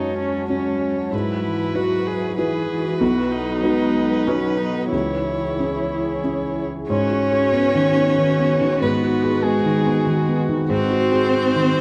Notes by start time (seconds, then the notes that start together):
Already playing: F#2 G#3 C#4 D#4 F#4 C#5 A5
0.18 C#4
0.49 C#4 F#4 C#5
1.13 G#2 F#3 E4 B4
1.44 E3
1.75 F#3 E4 F#4 B4
2.07 G#4
2.38 E3 E4 F#4 G#4 B4
2.70 E3
3.01 B1 F#3 D#4 F#4
3.31 D#4
3.63 G#3 D#4 F#4 B4
4.27 F#3 C#4 D#4 F#4 B4
4.58 D#4
4.92 C#2 E3 E4 G#4 C#5
5.59 C#4 E4 G#4
6.23 C#4 E4 G#4
6.89 G#2 C#4 D#4 F#4 B4 C#5
7.11 F#4
7.31 G#4
7.53 B3
7.75 D#3
7.96 B3
8.18 D#3
8.39 B3
8.61 D#3
8.80 G#2 B3 B4
9.02 F#4
9.23 G#4
9.43 G#3 B3 G#4
9.65 D#3
9.86 B3
10.07 D#3
10.28 B3
10.49 D#3
10.69 G#2 C4 F#4 G#4 C5
10.91 F#4
11.12 G#4
11.33 G#3
11.56 D#3
11.77 G#3